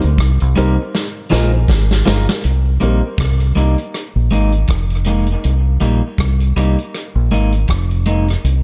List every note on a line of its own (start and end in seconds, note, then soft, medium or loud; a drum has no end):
0.02 0.18 D2 medium
0.02 closed hi-hat medium
0.18 0.37 C2 loud
0.18 kick loud
0.18 cross-stick loud
0.18 closed hi-hat medium
0.40 0.55 C2 medium
0.40 closed hi-hat soft
0.56 0.76 C2 loud
0.56 0.76 G3 medium
0.56 0.76 A#3 medium
0.56 0.74 C4 medium
0.56 0.74 D#4 medium
0.56 0.76 D#4 medium
0.56 0.75 G4 medium
0.56 0.75 A#4 medium
0.56 closed hi-hat medium
0.95 snare medium
1.30 1.65 A#1 loud
1.30 1.50 F3 medium
1.30 1.51 G#3 medium
1.30 1.49 D#4 medium
1.30 1.51 D#4 medium
1.30 1.49 F4 medium
1.30 1.49 G#4 medium
1.30 1.50 A#4 loud
1.30 snare medium
1.53 1.59 G#4 soft
1.53 1.59 A#4 soft
1.68 2.02 G#1 medium
1.68 kick loud
1.68 snare medium
1.91 snare medium
2.05 2.26 G1 medium
2.05 2.25 F3 medium
2.05 2.25 G#3 medium
2.05 2.24 D#4 medium
2.05 2.26 D#4 medium
2.05 2.24 F4 medium
2.05 2.24 G#4 medium
2.05 2.24 A#4 loud
2.05 snare loud
2.29 snare loud
2.44 2.77 C2 medium
2.44 closed hi-hat medium
2.80 3.01 A#1 medium
2.80 3.00 G3 medium
2.80 3.01 A#3 medium
2.80 2.99 C4 medium
2.80 3.01 D#4 medium
2.80 2.99 D#4 medium
2.80 3.00 G4 medium
2.80 3.00 A#4 medium
2.80 closed hi-hat medium
3.18 3.52 C2 loud
3.18 kick loud
3.18 cross-stick medium
3.18 closed hi-hat medium
3.40 closed hi-hat soft
3.55 3.75 C2 medium
3.55 3.75 G3 medium
3.55 3.76 A#3 medium
3.55 3.76 D#4 medium
3.55 closed hi-hat medium
3.78 closed hi-hat soft
3.94 cross-stick medium
3.94 closed hi-hat medium
4.16 4.29 A#1 medium
4.31 4.64 G#1 medium
4.31 4.51 G#3 medium
4.31 4.51 A#3 medium
4.31 4.51 D#4 medium
4.31 closed hi-hat medium
4.52 closed hi-hat soft
4.67 5.35 F1 medium
4.67 kick medium
4.67 cross-stick loud
4.67 closed hi-hat medium
4.90 closed hi-hat soft
5.04 5.26 G#3 medium
5.04 5.26 A#3 medium
5.04 5.26 D#4 medium
5.04 closed hi-hat medium
5.26 closed hi-hat soft
5.44 5.77 C2 medium
5.44 closed hi-hat medium
5.80 6.00 A#1 medium
5.80 6.00 G3 medium
5.80 6.01 A#3 medium
5.80 6.01 D#4 medium
5.80 closed hi-hat medium
6.18 6.52 C2 loud
6.18 kick loud
6.18 cross-stick loud
6.18 closed hi-hat medium
6.40 closed hi-hat soft
6.57 6.75 C2 medium
6.57 6.76 G3 medium
6.57 6.76 A#3 medium
6.57 6.77 D#4 medium
6.57 closed hi-hat medium
6.78 closed hi-hat soft
6.95 cross-stick medium
6.95 closed hi-hat medium
7.15 7.29 A#1 medium
7.31 7.64 G#1 medium
7.31 7.51 G#3 medium
7.31 7.51 A#3 medium
7.31 7.51 D#4 medium
7.31 closed hi-hat medium
7.52 closed hi-hat medium
7.68 8.35 F1 medium
7.68 kick medium
7.68 cross-stick loud
7.68 closed hi-hat medium
7.91 closed hi-hat soft
8.06 8.26 G#3 medium
8.06 8.26 A#3 medium
8.06 8.27 D#4 medium
8.06 closed hi-hat medium
8.28 cross-stick medium
8.28 closed hi-hat soft
8.44 8.63 C2 medium
8.44 closed hi-hat medium